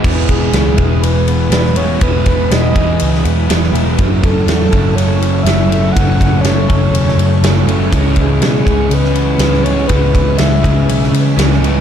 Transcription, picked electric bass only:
X:1
M:4/4
L:1/8
Q:1/4=122
K:E
V:1 name="Picked electric bass" clef=bass
E,,, E,,, C,, E,,, E,,,2 E,,,2 | E,,, E,,, E,,, E,,, C,, E,, E,,, E,,, | F,,, F,,, E,, F,,, F,,,2 F,,,2 | F,,, F,,, F,,, F,,, E,,, F,, F,,, F,,, |
C,, C,, B,, C,, C,,2 C,,2 | C,, C,, C,, C,, B,,, C, C,, C,, |]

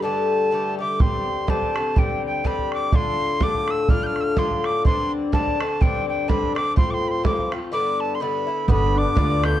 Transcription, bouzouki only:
X:1
M:2/4
L:1/8
Q:"Swing" 1/4=125
K:Gmix
V:1 name="Bouzouki"
[G,,D,A,G]2 [G,,D,A,G] [D,A,G] | [G,,D,CG]2 [G,,D,CG] [D,CG] | [G,,D,CG]2 [G,,D,CG]2 | [A,,D,DF]2 [A,,D,DF]2 |
[A,,D,DF]2 [A,,D,DF]2 | [G,,D,CD]2 [G,,D,CD] [D,CD] | [G,,D,CD]2 [G,,D,CD] [D,CD] | [A,,F,CF]2 [A,,F,CF] [F,CF] |
[G,,D,B,E]2 [G,,D,B,E] [D,B,E] | [G,,D,B,D]2 [G,,D,B,D] [D,B,D] |]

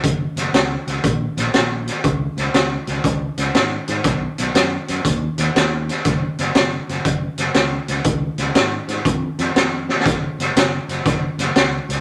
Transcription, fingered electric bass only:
X:1
M:4/4
L:1/8
Q:"Swing" 1/4=120
K:F#
V:1 name="Fingered electric bass" clef=bass
F,,, F,,, C,, C,, A,,, A,,, A,,,2 | C,, C,, C,, C,, C,, C,, G,, G,, | B,,, B,,, F,, F,, D,, D,, D,,2 | F,,, F,,, F,,, F,,, F,,, F,,, C,, C,, |
C,, C,, G,, G,, E,, E,, E,,2 | F,,, F,,, F,,, F,,, F,,, F,,, C,, C,, |]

